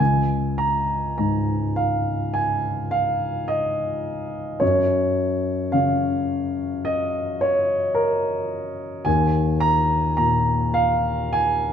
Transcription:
0.00 4.58 C#2 soft
0.00 0.59 G#5 medium
0.58 1.16 A#5 medium
1.18 4.62 G#2 soft
1.18 1.77 A#5 medium
1.76 2.34 F5 medium
2.34 2.92 G#5 medium
2.91 3.48 F5 medium
3.48 4.61 D#5 medium
4.60 9.02 F#2 soft
4.60 5.73 C#5 medium
5.72 9.07 C#3 soft
5.72 6.85 F5 medium
6.85 7.41 D#5 medium
7.41 7.97 C#5 medium
7.94 9.05 A#4 medium
9.05 11.73 D#2 soft
9.05 9.61 G#5 medium
9.60 10.15 A#5 medium
10.17 11.73 A#2 soft
10.17 10.75 A#5 medium
10.74 11.33 F5 medium
11.33 11.73 G#5 medium

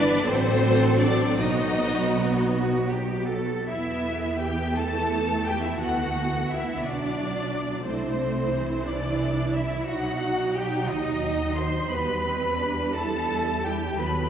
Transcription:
0.00 0.23 G1 medium
0.00 0.23 E3 medium
0.00 0.23 B3 medium
0.00 0.24 D4 medium
0.00 0.22 B4 loud
0.00 0.25 D5 loud
0.26 1.36 A1 medium
0.26 1.37 F#3 medium
0.26 1.00 C4 medium
0.26 1.38 C4 medium
0.26 1.38 A4 medium
0.26 1.01 C5 loud
0.99 1.38 D4 medium
0.99 1.38 D5 medium
1.38 3.46 B1 medium
1.38 3.42 F#3 medium
1.38 3.46 B3 medium
1.38 2.51 D#4 medium
1.38 2.43 F#4 medium
1.38 2.54 D#5 medium
2.53 2.88 F#4 medium
2.91 3.29 G4 medium
3.29 3.67 A4 medium
3.67 5.77 E2 medium
3.67 6.80 E3 medium
3.67 4.74 B3 medium
3.67 4.38 E4 medium
3.67 4.37 E5 medium
3.67 4.38 E5 medium
4.41 4.78 G4 medium
4.41 4.77 G5 medium
4.41 4.78 G5 medium
4.77 5.81 A3 medium
4.77 5.46 A4 medium
4.77 5.46 A5 medium
5.45 5.63 G4 medium
5.45 5.63 G5 medium
5.45 5.64 G5 medium
5.63 5.81 E4 medium
5.63 5.80 E5 medium
5.63 5.81 E5 medium
5.79 6.84 D2 medium
5.79 6.82 B3 soft
5.79 6.49 F#4 medium
5.79 6.48 F#5 medium
5.79 6.49 F#5 medium
6.49 6.84 E4 medium
6.49 6.83 E5 medium
6.49 6.84 E5 medium
6.83 7.84 B1 medium
6.83 7.86 F#3 medium
6.83 7.86 D4 soft
6.83 7.86 D4 medium
6.83 7.85 D5 medium
6.83 7.86 D5 medium
7.85 9.88 C2 soft
7.85 8.17 A3 soft
7.85 8.84 C4 medium
7.85 9.84 E4 medium
7.85 8.84 C5 medium
8.19 8.52 A3 medium
8.52 9.87 E3 medium
8.86 9.54 D4 medium
8.86 9.53 D5 medium
8.86 9.54 D5 medium
9.53 9.88 E4 medium
9.53 9.87 E5 medium
9.87 10.88 B1 soft
9.87 11.88 F#3 soft
9.87 11.92 D#4 medium
9.87 10.54 F#4 medium
9.87 10.55 F#5 medium
9.87 10.56 F#5 medium
10.55 10.90 G4 medium
10.55 10.89 G5 medium
10.55 10.90 G5 medium
10.89 11.93 D#2 soft
10.89 11.58 D#4 medium
10.89 11.57 D#5 medium
10.89 11.59 D#5 medium
11.58 11.92 C5 medium
11.58 11.92 C6 medium
11.58 11.91 C6 medium
11.92 13.96 E2 soft
11.92 13.95 G3 medium
11.92 12.25 B3 medium
11.92 12.94 B4 medium
11.92 12.94 B5 medium
12.25 12.58 C4 soft
12.59 12.93 D4 medium
12.92 13.99 E4 soft
12.92 13.65 A4 medium
12.92 13.64 A5 medium
12.92 13.65 A5 medium
13.64 13.99 G4 medium
13.64 13.99 G5 medium
13.99 14.29 D#2 soft
13.99 14.29 F#3 medium
13.99 14.29 B3 soft
13.99 14.29 B4 medium
13.99 14.29 B5 medium

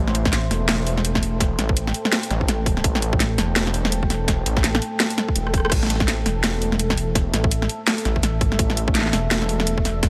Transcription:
0.00 0.50 A1 medium
0.00 10.09 A3 medium
0.00 10.09 A4 medium
0.00 8.38 C5 loud
0.00 0.28 E5 medium
0.08 snare medium
0.15 closed hi-hat medium
0.25 6.03 G5 medium
0.25 kick loud
0.25 snare medium
0.33 snare medium
0.33 closed hi-hat medium
0.51 1.57 E1 loud
0.51 snare soft
0.51 open hi-hat medium
0.69 snare loud
0.69 snare medium
0.69 closed hi-hat medium
0.87 open hi-hat medium
0.97 snare soft
1.05 closed hi-hat medium
1.15 kick medium
1.15 snare medium
1.23 open hi-hat medium
1.40 kick loud
1.40 snare medium
1.40 closed hi-hat medium
1.59 1.93 A1 loud
1.59 snare medium
1.59 closed hi-hat medium
1.69 kick loud
1.77 closed hi-hat medium
1.87 snare medium
1.94 open hi-hat medium
2.05 snare medium
2.12 snare loud
2.12 closed hi-hat medium
2.23 open hi-hat medium
2.31 2.83 A1 loud
2.31 snare medium
2.31 closed hi-hat soft
2.41 kick medium
2.48 snare medium
2.48 closed hi-hat medium
2.66 kick loud
2.66 open hi-hat medium
2.77 snare medium
2.84 3.37 A1 medium
2.84 kick loud
2.84 closed hi-hat medium
2.95 snare medium
3.02 closed hi-hat medium
3.13 kick loud
3.20 snare medium
3.20 closed hi-hat medium
3.38 4.45 E1 loud
3.38 snare medium
3.38 open hi-hat medium
3.56 snare loud
3.56 closed hi-hat medium
3.67 snare medium
3.74 open hi-hat medium
3.85 snare medium
3.92 closed hi-hat medium
4.03 kick medium
4.10 snare medium
4.10 open hi-hat medium
4.28 kick loud
4.28 snare medium
4.28 closed hi-hat medium
4.46 4.81 A1 loud
4.46 closed hi-hat medium
4.57 kick loud
4.57 snare medium
4.64 snare medium
4.64 closed hi-hat medium
4.75 snare medium
4.82 open hi-hat medium
5.00 snare loud
5.00 snare medium
5.00 closed hi-hat medium
5.10 open hi-hat medium
5.18 snare medium
5.18 closed hi-hat soft
5.29 kick medium
5.36 5.71 E1 loud
5.36 closed hi-hat medium
5.47 cross-stick medium
5.54 kick loud
5.54 cross-stick soft
5.54 open hi-hat medium
5.58 cross-stick soft
5.60 cross-stick soft
5.65 cross-stick medium
5.70 6.24 A1 medium
5.70 kick loud
5.70 cross-stick medium
5.70 closed hi-hat medium
5.70 crash medium
5.83 snare soft
5.86 snare soft
5.90 snare soft
5.90 closed hi-hat medium
5.95 snare soft
6.00 10.09 E5 medium
6.00 kick loud
6.00 snare medium
6.08 snare medium
6.08 closed hi-hat medium
6.26 7.32 E1 loud
6.26 snare medium
6.26 open hi-hat medium
6.44 snare loud
6.44 snare medium
6.44 closed hi-hat medium
6.62 open hi-hat medium
6.72 snare medium
6.79 closed hi-hat medium
6.90 kick medium
6.90 snare medium
6.97 open hi-hat medium
7.15 kick loud
7.15 snare medium
7.15 closed hi-hat medium
7.34 7.68 A1 loud
7.34 snare medium
7.34 closed hi-hat medium
7.44 kick loud
7.51 closed hi-hat medium
7.62 snare medium
7.69 open hi-hat medium
7.87 snare loud
7.87 snare medium
7.87 closed hi-hat medium
7.98 open hi-hat medium
8.05 8.42 A1 loud
8.05 snare medium
8.05 closed hi-hat soft
8.16 kick medium
8.23 10.09 D5 medium
8.23 snare medium
8.23 closed hi-hat medium
8.41 8.58 G#1 loud
8.41 kick loud
8.41 open hi-hat medium
8.52 snare medium
8.59 9.12 A1 medium
8.59 kick loud
8.59 closed hi-hat medium
8.70 snare medium
8.77 closed hi-hat medium
8.88 kick loud
8.95 snare medium
8.95 closed hi-hat medium
8.99 snare soft
9.01 snare soft
9.06 snare soft
9.11 snare soft
9.13 10.09 E1 loud
9.13 snare medium
9.13 open hi-hat medium
9.31 snare loud
9.31 closed hi-hat medium
9.42 snare medium
9.49 open hi-hat medium
9.60 snare medium
9.67 closed hi-hat medium
9.78 kick medium
9.85 snare medium
9.85 open hi-hat medium
10.03 kick loud
10.03 snare medium
10.03 closed hi-hat medium

